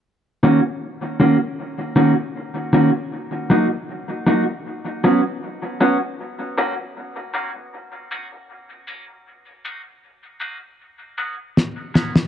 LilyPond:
<<
  \new Staff \with { instrumentName = "Clean electric guitar" } { \time 4/4 \key ees \minor \tempo 4 = 78 r8 <ees bes des' ges'>8 r8 <ees bes des' ges'>8 r8 <ees bes des' ges'>8 r8 <ees bes des' ges'>8 | r8 <ges bes ees' ges'>8 r8 <ges bes ees' ges'>8 r8 <ges ces' des' ges'>8 r8 <ges ces' des' ges'>8 | r8 <ees bes des' ges'>8 r8 <ees bes des' ges'>8 r8 <ees bes des' ges'>8 r8 <ees bes des' ges'>8 | r8 <ges bes ees' ges'>8 r8 <ges bes ees' ges'>8 r8 <ges ces' des' ges'>8 r8 <ges ces' des' ges'>8 | }
  \new DrumStaff \with { instrumentName = "Drums" } \drummode { \time 4/4 r4 r4 r4 r4 | r4 r4 r4 r4 | r4 r4 r4 r4 | r4 r4 r4 sn8 sn16 sn16 | }
>>